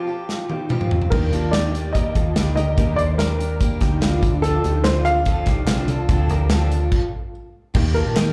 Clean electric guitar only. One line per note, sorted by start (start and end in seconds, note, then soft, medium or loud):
0.00 0.46 F4 soft
0.00 0.46 A4 medium
0.50 0.71 D#4 medium
0.50 0.70 G4 medium
0.70 1.10 C4 medium
0.70 1.09 F4 medium
1.12 1.33 D#4 medium
1.12 1.32 G4 medium
1.33 1.53 F4 medium
1.33 1.53 A4 medium
1.54 1.93 D#4 medium
1.54 1.92 G4 medium
1.95 2.16 G4 medium
1.95 2.15 A#4 medium
2.16 2.36 F4 medium
2.16 2.36 A4 medium
2.36 2.57 D#4 medium
2.36 2.57 G4 medium
2.57 2.77 G4 soft
2.57 2.77 A#4 medium
2.78 2.99 G4 medium
2.78 2.98 A#4 loud
2.99 3.20 A4 medium
2.99 3.19 C5 medium
3.19 3.78 G4 medium
3.19 3.78 A#4 medium
3.81 4.02 D#4 medium
3.81 4.02 G4 medium
4.02 4.42 D4 medium
4.02 4.41 F4 medium
4.43 4.64 D4 medium
4.43 4.64 F4 medium
4.64 4.85 D#4 medium
4.64 4.85 G4 medium
4.85 5.25 D4 medium
4.85 5.24 F4 medium
5.27 5.47 F4 medium
5.27 5.47 A4 medium
5.47 5.68 D#4 medium
5.47 5.67 G4 medium
5.68 5.89 D4 medium
5.68 5.88 F4 medium
5.89 6.09 F4 medium
5.89 6.08 A4 medium
6.09 6.30 F4 medium
6.09 6.29 A4 medium
6.30 6.51 G4 medium
6.30 6.50 A#4 medium
6.51 7.10 F4 medium
6.51 7.09 A4 medium
7.75 7.96 D#4 medium
7.75 7.96 G4 medium
7.96 8.17 F4 medium
7.96 8.17 A4 medium
8.17 8.33 D#4 medium
8.17 8.33 G4 medium